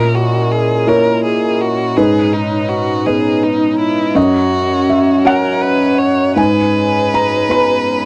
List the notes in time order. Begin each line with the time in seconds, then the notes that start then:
Already playing: A#2 C#4 E4 A#4 D#5 A#5
0.15 F#4
0.51 G#4
0.87 A#3 E4 A#4 C#5
1.24 G#4
1.61 F#4
1.97 G#2 G#4 B4 D#5 A#5
2.33 D#4
2.69 F#4
3.06 B3 G#4 B4 D#5
3.43 D#4
3.79 E4
4.15 F#2 C#4 F#4 C#5 D#5
4.90 E5
5.25 C#4 F#4 A#4 C#5 F#5
5.62 B4
5.98 C#5
6.36 G#2 G#4 B4 D#5 G#5
7.14 A#5
7.49 B3 D#4 B4 B5